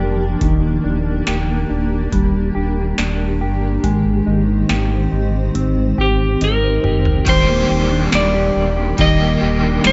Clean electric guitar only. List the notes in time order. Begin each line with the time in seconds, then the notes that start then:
Already playing: G2 F3 D4 G4
0.41 D#3
0.84 D4
1.27 G4
1.69 D4
2.13 G3
2.55 G4
2.98 D4
3.41 G4
3.83 G#3
4.26 D#4
4.69 G4
5.12 D#4
5.55 C4
5.98 G4
6.42 D#4
6.84 G4
7.27 D#3 G4
7.49 A#3
7.70 G4
7.91 D4
8.13 G3
8.34 G4
8.77 G4
8.98 D#3 G4
9.20 A#3
9.41 G4
9.62 D4
9.84 G3